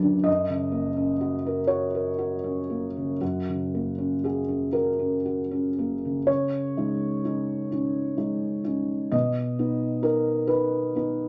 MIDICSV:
0, 0, Header, 1, 2, 480
1, 0, Start_track
1, 0, Key_signature, 6, "major"
1, 0, Tempo, 953895
1, 135, Time_signature, 6, 3, 24, 8
1, 1100, Tempo, 1023891
1, 3020, Tempo, 956938
1, 3980, Tempo, 931677
1, 5572, End_track
2, 0, Start_track
2, 0, Title_t, "Felt piano"
2, 0, Program_c, 0, 0
2, 0, Control_c, 0, 64, 127
2, 0, Note_on_c, 0, 42, 50
2, 0, Note_on_c, 0, 54, 41
2, 0, Note_on_c, 0, 62, 40
2, 0, Note_on_c, 0, 66, 45
2, 0, Note_on_c, 0, 74, 77
2, 11, Note_on_c, 0, 50, 38
2, 80, Note_off_c, 0, 54, 0
2, 113, Note_off_c, 0, 42, 0
2, 119, Note_on_c, 0, 75, 76
2, 124, Note_on_c, 0, 42, 49
2, 128, Note_off_c, 0, 74, 0
2, 131, Note_off_c, 0, 50, 0
2, 144, Control_c, 0, 64, 0
2, 145, Note_off_c, 0, 66, 0
2, 148, Note_off_c, 0, 62, 0
2, 215, Control_c, 0, 64, 127
2, 247, Note_on_c, 0, 49, 41
2, 361, Note_on_c, 0, 58, 35
2, 438, Note_off_c, 0, 49, 0
2, 484, Note_on_c, 0, 61, 35
2, 555, Note_off_c, 0, 58, 0
2, 607, Note_on_c, 0, 66, 41
2, 677, Note_off_c, 0, 61, 0
2, 736, Note_on_c, 0, 70, 41
2, 801, Note_off_c, 0, 66, 0
2, 841, Note_off_c, 0, 75, 0
2, 842, Note_on_c, 0, 73, 57
2, 846, Note_on_c, 0, 66, 45
2, 928, Note_off_c, 0, 70, 0
2, 979, Note_on_c, 0, 70, 39
2, 1047, Note_off_c, 0, 66, 0
2, 1100, Note_on_c, 0, 66, 42
2, 1173, Note_off_c, 0, 70, 0
2, 1218, Note_on_c, 0, 61, 35
2, 1290, Note_off_c, 0, 66, 0
2, 1341, Note_on_c, 0, 58, 33
2, 1410, Note_off_c, 0, 61, 0
2, 1466, Note_on_c, 0, 49, 30
2, 1532, Note_off_c, 0, 58, 0
2, 1555, Note_off_c, 0, 42, 0
2, 1576, Note_off_c, 0, 73, 0
2, 1579, Note_on_c, 0, 42, 36
2, 1580, Note_on_c, 0, 66, 47
2, 1583, Note_off_c, 0, 49, 0
2, 1589, Control_c, 0, 64, 0
2, 1660, Control_c, 0, 64, 127
2, 1709, Note_on_c, 0, 49, 31
2, 1832, Note_on_c, 0, 58, 32
2, 1897, Note_off_c, 0, 49, 0
2, 1941, Note_on_c, 0, 61, 32
2, 2018, Note_off_c, 0, 58, 0
2, 2062, Note_off_c, 0, 66, 0
2, 2063, Note_on_c, 0, 68, 47
2, 2069, Note_on_c, 0, 66, 34
2, 2133, Note_off_c, 0, 61, 0
2, 2178, Note_on_c, 0, 61, 34
2, 2256, Note_off_c, 0, 66, 0
2, 2290, Note_on_c, 0, 66, 35
2, 2290, Note_on_c, 0, 70, 47
2, 2301, Note_off_c, 0, 68, 0
2, 2370, Note_off_c, 0, 61, 0
2, 2415, Note_on_c, 0, 61, 32
2, 2487, Note_off_c, 0, 66, 0
2, 2538, Note_on_c, 0, 66, 32
2, 2610, Note_off_c, 0, 61, 0
2, 2659, Note_on_c, 0, 61, 31
2, 2733, Note_off_c, 0, 66, 0
2, 2788, Note_on_c, 0, 58, 30
2, 2854, Note_off_c, 0, 61, 0
2, 2911, Note_on_c, 0, 49, 29
2, 2975, Note_off_c, 0, 58, 0
2, 2999, Note_off_c, 0, 42, 0
2, 3013, Note_off_c, 0, 49, 0
2, 3013, Note_off_c, 0, 70, 0
2, 3013, Note_on_c, 0, 73, 68
2, 3020, Note_on_c, 0, 49, 43
2, 3027, Control_c, 0, 64, 0
2, 3109, Control_c, 0, 64, 127
2, 3266, Note_on_c, 0, 56, 34
2, 3270, Note_on_c, 0, 63, 34
2, 3484, Note_off_c, 0, 56, 0
2, 3486, Note_off_c, 0, 63, 0
2, 3506, Note_on_c, 0, 63, 34
2, 3509, Note_on_c, 0, 61, 33
2, 3724, Note_off_c, 0, 63, 0
2, 3726, Note_off_c, 0, 61, 0
2, 3739, Note_on_c, 0, 61, 34
2, 3743, Note_on_c, 0, 63, 36
2, 3957, Note_off_c, 0, 61, 0
2, 3959, Note_off_c, 0, 63, 0
2, 3970, Note_on_c, 0, 56, 32
2, 3970, Note_on_c, 0, 63, 37
2, 4194, Note_off_c, 0, 56, 0
2, 4194, Note_off_c, 0, 63, 0
2, 4210, Note_on_c, 0, 61, 32
2, 4213, Note_on_c, 0, 63, 35
2, 4436, Note_off_c, 0, 61, 0
2, 4437, Note_off_c, 0, 63, 0
2, 4441, Note_off_c, 0, 49, 0
2, 4454, Note_on_c, 0, 75, 62
2, 4456, Note_on_c, 0, 47, 44
2, 4458, Note_off_c, 0, 73, 0
2, 4470, Control_c, 0, 64, 0
2, 4552, Control_c, 0, 64, 127
2, 4698, Note_on_c, 0, 59, 34
2, 4699, Note_on_c, 0, 63, 35
2, 4918, Note_off_c, 0, 63, 0
2, 4919, Note_off_c, 0, 59, 0
2, 4924, Note_on_c, 0, 70, 59
2, 4925, Note_on_c, 0, 63, 35
2, 4938, Note_off_c, 0, 75, 0
2, 5149, Note_off_c, 0, 63, 0
2, 5154, Note_on_c, 0, 71, 58
2, 5157, Note_on_c, 0, 63, 37
2, 5171, Note_off_c, 0, 70, 0
2, 5387, Note_off_c, 0, 63, 0
2, 5400, Note_on_c, 0, 59, 35
2, 5407, Note_on_c, 0, 63, 37
2, 5572, Note_off_c, 0, 47, 0
2, 5572, Note_off_c, 0, 59, 0
2, 5572, Note_off_c, 0, 63, 0
2, 5572, Note_off_c, 0, 71, 0
2, 5572, End_track
0, 0, End_of_file